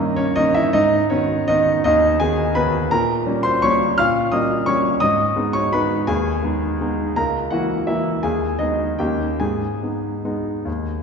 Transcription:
0.00 0.78 G2 medium
0.00 0.33 D#3 medium
0.00 0.34 A#3 medium
0.00 0.16 C#4 soft
0.00 0.14 D#4 medium
0.00 0.17 D#5 medium
0.16 0.36 C#4 medium
0.16 0.36 C#5 loud
0.36 0.70 D#3 medium
0.36 0.71 A#3 medium
0.36 0.71 C#4 medium
0.36 0.55 D#4 medium
0.36 0.55 D#5 loud
0.54 0.73 E4 medium
0.54 0.74 E5 loud
0.73 1.10 G#2 medium
0.73 1.08 D#4 medium
0.73 1.10 D#5 loud
1.10 1.45 D#3 medium
1.10 1.45 B3 medium
1.10 1.46 C#4 medium
1.10 1.48 C#5 medium
1.48 1.82 D#3 medium
1.48 1.82 B3 medium
1.48 1.83 D#4 medium
1.48 1.83 D#5 loud
1.84 2.19 D#2 medium
1.84 2.18 D#4 medium
1.84 2.20 D#5 loud
2.20 2.53 D#3 medium
2.20 2.53 B3 medium
2.20 2.54 G#4 medium
2.20 2.56 G#5 loud
2.55 2.88 D#3 medium
2.55 2.88 B3 medium
2.55 2.73 B4 medium
2.55 2.74 B5 loud
2.91 3.25 A#2 medium
2.91 3.41 A#4 medium
2.91 3.44 A#5 loud
3.27 3.59 G3 medium
3.27 3.60 A#3 soft
3.27 3.60 C#4 medium
3.43 3.62 C5 medium
3.43 3.62 C6 loud
3.62 3.95 G3 medium
3.62 3.95 A#3 medium
3.62 3.95 C#4 medium
3.62 3.96 C#5 medium
3.62 3.98 C#6 loud
3.98 4.32 A#2 medium
3.98 4.30 F5 medium
3.98 4.32 F6 loud
4.32 4.64 G3 medium
4.32 4.64 A#3 medium
4.32 4.64 C#4 medium
4.32 4.65 D#5 medium
4.32 4.67 D#6 medium
4.66 4.98 G3 medium
4.66 4.98 A#3 medium
4.66 4.99 C#4 medium
4.66 4.99 C#5 medium
4.66 5.01 C#6 loud
5.00 5.35 G#2 medium
5.00 5.51 D#5 medium
5.00 5.55 D#6 loud
5.36 5.70 G#3 medium
5.36 5.70 B3 medium
5.36 5.70 D#4 medium
5.53 5.72 C#5 medium
5.53 5.73 C#6 loud
5.73 6.04 G#3 medium
5.73 6.04 B3 medium
5.73 6.05 D#4 medium
5.73 6.05 B4 medium
5.73 6.07 B5 loud
6.07 6.41 D#2 medium
6.07 7.13 G#4 medium
6.07 7.16 G#5 medium
6.43 6.76 G#3 medium
6.43 6.77 B3 medium
6.43 6.77 D#4 medium
6.81 7.13 G#3 medium
6.81 7.14 B3 medium
6.81 7.14 D#4 medium
7.16 7.50 C#2 medium
7.16 7.49 A#4 medium
7.16 7.51 A#5 medium
7.51 7.83 E3 soft
7.51 7.84 A#3 soft
7.51 7.84 E4 soft
7.51 7.85 F#4 medium
7.51 7.86 F#5 medium
7.87 8.20 E3 soft
7.87 8.20 A#3 soft
7.87 8.21 E4 medium
7.87 8.23 E5 medium
8.23 8.58 D#2 medium
8.23 8.57 G#4 medium
8.23 8.59 G#5 medium
8.59 8.95 G#3 soft
8.59 8.95 B3 soft
8.59 8.96 D#4 medium
8.59 8.98 D#5 medium
8.99 9.39 D#2 medium
8.99 9.37 A#3 soft
8.99 9.37 C#4 soft
8.99 9.37 D#4 soft
8.99 9.38 G4 medium
8.99 9.40 G5 medium
9.40 9.81 G#2 medium
9.40 11.03 G#4 medium
9.40 11.03 G#5 medium
9.83 10.21 G#3 soft
9.83 10.21 B3 soft
9.83 10.21 D#4 soft
10.25 10.62 G#3 soft
10.25 10.62 B3 soft
10.25 10.63 D#4 soft
10.65 11.03 D#2 medium

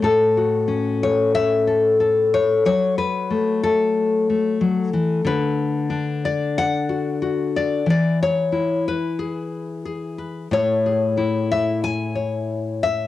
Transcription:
0.02 2.65 A2 medium
0.02 1.02 A4 medium
0.37 3.87 F#4 soft
0.68 2.61 C#4 medium
1.03 1.34 C#5 medium
1.35 2.33 E5 loud
1.67 2.00 A4 soft
2.00 3.01 A4 soft
2.34 2.65 C#5 medium
2.65 4.60 F#3 medium
2.65 2.97 C#5 loud
2.98 3.63 B4 medium
3.30 4.28 A3 medium
3.63 5.26 A4 medium
4.30 5.22 A3 soft
4.61 4.93 F#3 medium
4.93 5.24 E3 medium
5.25 7.86 D3 medium
5.25 6.24 B4 medium
5.90 7.82 D4 medium
6.25 7.22 D5 medium
6.58 7.88 F#5 loud
6.89 7.21 F#4 soft
7.22 7.83 F#4 soft
7.56 7.88 D5 medium
7.86 10.47 E3 medium
7.86 8.21 D5 medium
8.23 8.87 C#5 medium
8.52 10.47 E4 medium
8.88 10.17 B4 medium
9.19 9.84 G#4 soft
9.86 10.48 G#4 soft
10.18 10.47 B4 soft
10.51 13.07 A2 medium
10.51 12.14 C#5 loud
10.86 13.07 G#4 soft
11.17 13.07 E4 medium
11.51 11.83 E5 medium
11.84 12.81 G#5 loud
12.15 13.07 C#5 soft
12.83 13.07 E5 medium

